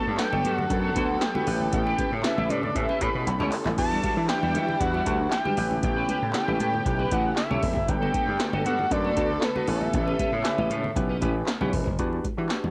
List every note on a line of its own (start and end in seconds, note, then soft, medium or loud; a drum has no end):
0.00 1.45 F#3 medium
0.00 1.43 A3 medium
0.00 3.74 B3 medium
0.00 3.74 A4 medium
0.00 0.15 A5 loud
0.07 0.16 G2 loud
0.18 0.56 F#3 medium
0.18 0.55 D4 medium
0.18 0.56 A4 medium
0.18 0.56 B4 medium
0.18 0.54 G5 loud
0.18 muted clean electric guitar stroke soft
0.18 snare loud
0.18 clap medium
0.18 closed hi-hat medium
0.18 muted conga soft
0.32 0.42 G1 loud
0.32 0.43 B3 medium
0.32 0.44 F#4 medium
0.32 0.45 A4 medium
0.32 muted conga soft
0.32 high conga medium
0.44 0.64 G2 loud
0.44 0.57 B3 medium
0.44 0.57 F#4 medium
0.44 0.57 A4 medium
0.44 closed hi-hat medium
0.44 high conga medium
0.54 0.71 F#5 loud
0.58 muted clean electric guitar stroke soft
0.58 low conga medium
0.70 0.90 F#2 loud
0.70 0.88 D4 medium
0.70 0.89 F#4 medium
0.70 0.89 A4 medium
0.70 0.89 B4 medium
0.70 1.23 F#5 loud
0.70 muted clean electric guitar stroke soft
0.70 kick loud
0.70 closed hi-hat medium
0.70 muted conga soft
0.84 0.94 B3 medium
0.84 0.95 F#4 medium
0.84 0.96 A4 medium
0.95 1.16 D2 medium
0.95 1.08 B3 medium
0.95 1.23 D4 medium
0.95 1.23 F#4 medium
0.95 1.08 F#4 medium
0.95 1.23 A4 medium
0.95 1.08 A4 medium
0.95 1.23 B4 medium
0.95 kick medium
0.95 closed hi-hat medium
1.20 1.72 G5 medium
1.20 muted clean electric guitar stroke soft
1.20 snare loud
1.20 clap medium
1.20 closed hi-hat medium
1.20 muted conga soft
1.35 1.46 B3 medium
1.35 1.47 D4 medium
1.35 1.47 F#4 medium
1.35 1.47 A4 medium
1.35 1.47 B4 medium
1.35 1.46 B4 medium
1.35 muted conga soft
1.35 high conga medium
1.35 low conga medium
1.47 1.67 A1 loud
1.47 3.76 C#3 medium
1.47 3.76 A3 medium
1.47 2.09 C#4 medium
1.47 2.09 E4 medium
1.47 2.10 G4 medium
1.47 2.10 B4 medium
1.47 muted clean electric guitar stroke soft
1.47 open hi-hat medium
1.60 muted clean electric guitar stroke soft
1.60 high conga medium
1.60 low conga medium
1.72 1.93 A1 loud
1.72 2.21 G5 loud
1.72 muted clean electric guitar stroke soft
1.72 kick loud
1.72 closed hi-hat medium
1.86 1.97 C#4 medium
1.86 1.97 G4 medium
1.86 1.98 B4 medium
1.86 muted conga soft
1.98 2.10 C#4 medium
1.98 2.11 G4 medium
1.98 2.10 B4 medium
1.98 kick medium
1.98 closed hi-hat medium
1.98 high conga medium
2.12 2.21 A2 medium
2.12 muted clean electric guitar stroke soft
2.23 2.31 C4 medium
2.23 2.61 E4 medium
2.23 2.61 G4 medium
2.23 2.61 B4 medium
2.23 2.52 E5 medium
2.23 muted clean electric guitar stroke soft
2.23 snare loud
2.23 clap medium
2.23 closed hi-hat medium
2.23 muted conga soft
2.30 2.64 C#4 medium
2.37 2.47 A1 loud
2.37 2.48 C#4 medium
2.37 2.49 G4 medium
2.37 2.50 B4 medium
2.37 muted conga soft
2.37 high conga medium
2.49 2.70 A2 loud
2.49 2.62 C#4 medium
2.49 2.62 G4 medium
2.49 2.62 B4 medium
2.49 2.63 D5 medium
2.49 closed hi-hat medium
2.49 high conga medium
2.63 2.77 D5 medium
2.63 muted clean electric guitar stroke medium
2.63 low conga medium
2.75 2.86 A2 loud
2.75 2.94 C#4 medium
2.75 2.94 E4 medium
2.75 2.94 G4 medium
2.75 2.94 B4 medium
2.75 3.03 E5 medium
2.75 muted clean electric guitar stroke soft
2.75 kick loud
2.75 closed hi-hat medium
2.89 3.00 C#4 medium
2.89 3.00 G4 medium
2.89 3.01 B4 medium
2.89 muted conga soft
3.00 3.11 A2 loud
3.00 3.28 C#4 medium
3.00 3.13 C#4 medium
3.00 3.28 E4 medium
3.00 3.28 G4 medium
3.00 3.13 G4 medium
3.00 3.28 B4 medium
3.00 3.13 B4 medium
3.00 3.52 B5 loud
3.00 kick medium
3.00 closed hi-hat medium
3.14 3.24 B2 medium
3.14 muted clean electric guitar stroke soft
3.26 3.37 B1 medium
3.26 muted clean electric guitar stroke soft
3.26 clap medium
3.26 closed hi-hat medium
3.40 3.50 C#2 medium
3.40 3.67 C#4 medium
3.40 3.51 C#4 medium
3.40 3.67 E4 medium
3.40 3.67 G4 medium
3.40 3.51 G4 medium
3.40 3.67 A4 medium
3.40 3.53 C#5 medium
3.40 clap medium
3.40 muted conga soft
3.40 high conga medium
3.40 low conga medium
3.52 muted clean electric guitar stroke soft
3.52 clap medium
3.52 open hi-hat medium
3.65 3.75 A1 medium
3.65 muted clean electric guitar stroke medium
3.65 clap loud
3.65 high conga medium
3.65 low conga medium
3.78 3.98 E2 loud
3.78 5.56 E3 medium
3.78 5.56 G3 medium
3.78 4.14 D4 medium
3.78 5.56 D4 medium
3.78 5.56 E4 loud
3.78 4.15 F#4 medium
3.78 4.15 G4 medium
3.78 4.15 B4 medium
3.78 4.26 A5 loud
3.78 muted clean electric guitar stroke soft
3.78 kick loud
3.78 crash medium
3.78 muted conga soft
3.91 4.02 G3 medium
3.91 4.03 D4 medium
3.91 4.03 F#4 medium
3.91 muted conga soft
4.03 4.15 G3 medium
4.03 4.16 D4 medium
4.03 4.16 F#4 medium
4.03 kick medium
4.03 closed hi-hat medium
4.03 high conga medium
4.17 4.26 E3 medium
4.17 muted clean electric guitar stroke soft
4.28 4.65 D4 medium
4.28 4.66 E4 medium
4.28 4.66 G4 medium
4.28 4.66 B4 medium
4.28 4.82 G5 loud
4.28 muted clean electric guitar stroke soft
4.28 snare loud
4.28 clap medium
4.28 closed hi-hat medium
4.43 4.56 E2 medium
4.43 4.53 G3 medium
4.43 4.54 D4 medium
4.43 4.55 F#4 medium
4.43 muted conga soft
4.43 high conga medium
4.54 4.74 E3 loud
4.54 4.67 G3 medium
4.54 4.67 D4 medium
4.54 4.67 F#4 medium
4.54 closed hi-hat medium
4.54 high conga medium
4.68 muted clean electric guitar stroke soft
4.68 low conga medium
4.80 5.00 E2 medium
4.80 4.99 D4 medium
4.80 4.99 F#4 medium
4.80 4.99 G4 medium
4.80 4.99 B4 medium
4.80 5.31 F#5 loud
4.80 muted clean electric guitar stroke soft
4.80 kick loud
4.80 closed hi-hat loud
4.80 muted conga soft
4.94 5.05 G3 medium
4.94 5.05 D4 medium
4.94 5.06 F#4 medium
4.94 muted conga soft
5.06 5.26 D2 medium
5.06 5.18 G3 medium
5.06 5.33 D4 medium
5.06 5.18 D4 medium
5.06 5.33 F#4 medium
5.06 5.19 F#4 medium
5.06 5.33 G4 medium
5.06 5.33 B4 medium
5.06 kick medium
5.06 closed hi-hat medium
5.20 muted clean electric guitar stroke medium
5.31 5.80 G5 loud
5.31 muted clean electric guitar stroke soft
5.31 snare loud
5.31 clap medium
5.31 closed hi-hat medium
5.31 muted conga soft
5.45 5.60 G3 medium
5.45 5.57 D4 medium
5.45 5.57 F#4 medium
5.45 5.57 G4 medium
5.45 5.56 G4 medium
5.45 5.57 B4 medium
5.45 high conga medium
5.45 low conga medium
5.57 5.77 A1 loud
5.57 7.86 C#3 medium
5.57 11.95 A3 medium
5.57 7.86 B3 medium
5.57 6.20 C#4 medium
5.57 6.20 E4 medium
5.57 7.86 G4 medium
5.57 6.20 G4 medium
5.57 6.20 B4 medium
5.57 muted clean electric guitar stroke soft
5.57 open hi-hat medium
5.71 muted clean electric guitar stroke medium
5.71 high conga medium
5.71 low conga medium
5.83 6.03 A1 loud
5.83 6.31 G5 loud
5.83 muted clean electric guitar stroke soft
5.83 kick loud
5.83 closed hi-hat medium
5.83 muted conga soft
5.96 6.07 C#4 medium
5.96 6.08 G4 medium
5.96 6.09 B4 medium
6.09 6.21 C#4 medium
6.09 6.21 G4 medium
6.09 6.21 B4 medium
6.09 closed hi-hat medium
6.09 high conga medium
6.22 6.32 A2 medium
6.22 muted clean electric guitar stroke soft
6.33 6.71 C#4 medium
6.33 6.71 E4 medium
6.33 6.71 G4 medium
6.33 6.71 A4 medium
6.33 7.13 G5 loud
6.33 muted clean electric guitar stroke soft
6.33 snare loud
6.33 clap loud
6.33 closed hi-hat medium
6.33 muted conga soft
6.48 6.57 A1 loud
6.48 6.59 C#4 medium
6.48 6.59 G4 medium
6.48 6.60 B4 medium
6.48 high conga medium
6.60 6.80 A2 loud
6.60 6.72 C#4 medium
6.60 6.72 G4 medium
6.60 6.73 B4 medium
6.60 closed hi-hat medium
6.60 high conga medium
6.74 muted clean electric guitar stroke medium
6.74 low conga medium
6.85 7.05 B1 loud
6.85 7.04 C#4 medium
6.85 7.04 E4 medium
6.85 7.04 G4 medium
6.85 7.05 B4 medium
6.85 muted clean electric guitar stroke soft
6.85 kick loud
6.85 closed hi-hat medium
6.99 7.10 C#4 medium
6.99 7.11 G4 medium
6.99 7.11 B4 medium
6.99 muted conga soft
7.11 7.31 A1 medium
7.11 7.23 C#4 medium
7.11 7.38 C#4 medium
7.11 7.39 E4 medium
7.11 7.24 G4 medium
7.11 7.39 G4 medium
7.11 7.39 B4 medium
7.11 7.24 B4 medium
7.11 7.37 F#5 loud
7.11 kick medium
7.11 closed hi-hat medium
7.25 muted clean electric guitar stroke soft
7.36 7.90 E5 medium
7.36 muted clean electric guitar stroke soft
7.36 snare loud
7.36 clap medium
7.36 closed hi-hat medium
7.50 7.60 B1 medium
7.50 7.77 C#4 medium
7.50 7.61 C#4 medium
7.50 7.78 E4 medium
7.50 7.78 G4 medium
7.50 7.62 G4 medium
7.50 7.78 A4 medium
7.50 7.63 C#5 medium
7.50 high conga medium
7.50 low conga medium
7.62 7.73 E1 loud
7.62 muted clean electric guitar stroke soft
7.62 kick loud
7.62 open hi-hat medium
7.76 7.85 F#1 medium
7.76 muted clean electric guitar stroke soft
7.76 kick medium
7.76 high conga medium
7.76 low conga medium
7.88 8.08 G1 loud
7.88 9.66 D3 medium
7.88 8.25 F#3 medium
7.88 11.94 B3 medium
7.88 8.25 D4 medium
7.88 11.94 A4 medium
7.88 8.25 A4 medium
7.88 8.25 B4 medium
7.88 8.65 G5 loud
7.88 muted clean electric guitar stroke soft
7.88 kick loud
7.88 closed hi-hat medium
7.88 muted conga soft
8.02 8.12 B3 medium
8.02 8.13 F#4 medium
8.02 8.14 A4 medium
8.02 muted conga soft
8.13 8.26 B3 medium
8.13 8.26 F#4 medium
8.13 8.26 A4 medium
8.13 kick loud
8.13 closed hi-hat medium
8.13 high conga medium
8.27 8.36 G2 loud
8.27 muted clean electric guitar stroke medium
8.39 8.76 D4 medium
8.39 8.76 F#4 medium
8.39 8.76 A4 medium
8.39 8.76 B4 medium
8.39 muted clean electric guitar stroke soft
8.39 snare loud
8.39 clap medium
8.39 closed hi-hat medium
8.39 muted conga soft
8.53 8.62 G1 loud
8.53 8.64 B3 medium
8.53 8.65 F#4 medium
8.53 8.65 A4 medium
8.53 muted conga soft
8.53 high conga medium
8.65 8.85 G2 medium
8.65 8.77 B3 medium
8.65 8.78 F#4 medium
8.65 8.78 A4 medium
8.65 8.93 F#5 loud
8.65 closed hi-hat medium
8.65 high conga medium
8.79 muted clean electric guitar stroke soft
8.79 low conga medium
8.91 9.10 F#2 medium
8.91 9.09 D4 medium
8.91 9.10 F#4 medium
8.91 9.10 A4 medium
8.91 9.10 B4 medium
8.91 9.45 D5 loud
8.91 muted clean electric guitar stroke soft
8.91 kick loud
8.91 closed hi-hat medium
8.91 muted conga soft
9.04 9.15 B3 medium
9.04 9.16 F#4 medium
9.04 9.17 A4 medium
9.04 muted conga soft
9.16 9.36 D2 medium
9.16 9.28 B3 medium
9.16 9.44 D4 medium
9.16 9.44 F#4 medium
9.16 9.29 F#4 medium
9.16 9.44 A4 medium
9.16 9.29 A4 medium
9.16 9.44 B4 medium
9.16 kick medium
9.16 closed hi-hat medium
9.30 muted clean electric guitar stroke soft
9.41 9.70 B4 medium
9.41 muted clean electric guitar stroke soft
9.41 snare loud
9.41 clap medium
9.41 closed hi-hat medium
9.41 muted conga soft
9.55 9.68 B3 medium
9.55 9.68 D4 medium
9.55 9.68 F#4 medium
9.55 9.68 A4 medium
9.55 9.68 B4 loud
9.55 9.67 B4 medium
9.55 high conga medium
9.55 low conga medium
9.67 9.87 A1 loud
9.67 11.97 C#3 medium
9.67 10.30 C#4 medium
9.67 10.30 E4 medium
9.67 10.30 G4 medium
9.67 10.30 B4 medium
9.67 11.48 E5 loud
9.67 muted clean electric guitar stroke soft
9.67 open hi-hat medium
9.81 muted clean electric guitar stroke medium
9.81 high conga medium
9.81 low conga medium
9.93 10.13 A1 loud
9.93 muted clean electric guitar stroke soft
9.93 kick loud
9.93 closed hi-hat medium
9.93 muted conga soft
10.07 10.18 C#4 medium
10.07 10.18 G4 medium
10.07 10.19 B4 medium
10.07 muted conga soft
10.19 10.31 C#4 medium
10.19 10.31 G4 medium
10.19 10.32 B4 medium
10.19 kick medium
10.19 closed hi-hat medium
10.19 high conga medium
10.32 10.42 A2 medium
10.32 muted clean electric guitar stroke soft
10.44 10.81 C#4 medium
10.44 10.81 E4 medium
10.44 10.81 G4 medium
10.44 10.82 B4 loud
10.44 muted clean electric guitar stroke soft
10.44 snare loud
10.44 clap medium
10.44 closed hi-hat medium
10.44 muted conga soft
10.58 10.68 A1 loud
10.58 10.69 C#4 medium
10.58 10.70 G4 medium
10.58 10.71 B4 medium
10.58 muted conga soft
10.58 high conga medium
10.70 10.90 A2 loud
10.70 10.82 C#4 medium
10.70 10.83 G4 medium
10.70 10.83 B4 medium
10.70 closed hi-hat medium
10.70 high conga medium
10.84 muted clean electric guitar stroke soft
10.84 low conga medium
10.96 11.16 B1 medium
10.96 11.14 C#4 medium
10.96 11.15 E4 medium
10.96 11.15 G4 medium
10.96 11.15 B4 loud
10.96 muted clean electric guitar stroke soft
10.96 kick loud
10.96 closed hi-hat loud
10.96 muted conga soft
11.09 11.20 C#4 medium
11.09 11.21 G4 medium
11.09 11.22 B4 medium
11.21 11.41 A1 medium
11.21 11.49 C#4 medium
11.21 11.34 C#4 medium
11.21 11.49 E4 medium
11.21 11.49 G4 medium
11.21 11.34 G4 medium
11.21 11.49 B4 loud
11.21 11.34 B4 medium
11.21 kick medium
11.21 closed hi-hat medium
11.21 high conga medium
11.35 muted clean electric guitar stroke medium
11.47 muted clean electric guitar stroke soft
11.47 snare loud
11.47 clap medium
11.47 closed hi-hat medium
11.47 muted conga soft
11.61 11.70 B1 medium
11.61 11.88 C#4 medium
11.61 11.72 C#4 medium
11.61 11.88 E4 medium
11.61 11.88 G4 medium
11.61 11.72 G4 medium
11.61 11.88 B4 loud
11.61 11.73 C#5 medium
11.61 muted conga soft
11.61 high conga medium
11.61 low conga medium
11.73 11.83 E1 medium
11.73 muted clean electric guitar stroke soft
11.73 kick loud
11.73 open hi-hat medium
11.86 11.96 F#1 medium
11.86 muted clean electric guitar stroke soft
11.86 kick medium
11.86 high conga medium
11.86 low conga medium
11.99 12.18 E2 medium
11.99 12.26 D4 medium
11.99 12.26 F#4 medium
11.99 12.26 G4 medium
11.99 12.26 B4 loud
11.99 kick loud
11.99 closed hi-hat medium
11.99 muted conga soft
12.13 muted conga soft
12.24 kick medium
12.24 closed hi-hat medium
12.24 high conga medium
12.37 12.47 E3 medium
12.37 12.71 D4 medium
12.37 12.71 F#4 medium
12.37 12.71 G4 medium
12.37 12.71 B4 medium
12.49 snare loud
12.49 clap medium
12.49 closed hi-hat medium
12.49 muted conga soft
12.64 12.71 E2 medium
12.64 muted conga soft
12.64 high conga medium